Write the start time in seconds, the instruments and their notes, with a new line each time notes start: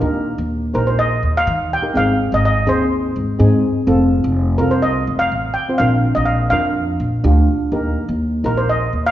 0.00 upright bass D#2, steel pan D#4 G4 A#4
0.38 upright bass D#2
0.74 upright bass A#1, steel pan D#4 G4 A#4 C5
0.87 steel pan C5
0.99 steel pan D#5
1.23 upright bass D#2
1.37 steel pan F5
1.47 upright bass D#3
1.73 steel pan G5
1.82 steel pan D#4 G4 A#4
1.94 upright bass G#1, steel pan C4 D#4 G#4 F5
2.32 upright bass G#1, steel pan D#5
2.45 steel pan D#5
2.67 upright bass D#2, steel pan C4 D#4 G#4 C5
3.16 upright bass G#1
3.39 upright bass G#2, steel pan C4 D#4 G#4
3.87 upright bass F1, steel pan C4 F4 A4
4.24 upright bass F1
4.58 upright bass C2, steel pan C4 F4 A4 A#4
4.71 steel pan C5
4.82 steel pan D#5
5.07 upright bass F1
5.19 steel pan F5
5.32 upright bass A1
5.54 steel pan G5
5.69 steel pan C4 F4 C5
5.78 upright bass A#1, steel pan D4 F4 A#4 F5
6.15 upright bass A#1, steel pan D#5
6.25 steel pan F5
6.50 upright bass F2, steel pan D4 F4 A#4 F5
7.00 upright bass A#1
7.24 upright bass D2, steel pan D4 F4 G4
7.72 upright bass D#2, steel pan D#4 G4 A#4
8.09 upright bass D#2
8.44 upright bass A#1, steel pan D#4 G4 A#4
8.57 steel pan C5
8.69 steel pan D#5
8.93 upright bass D#2
9.07 steel pan F5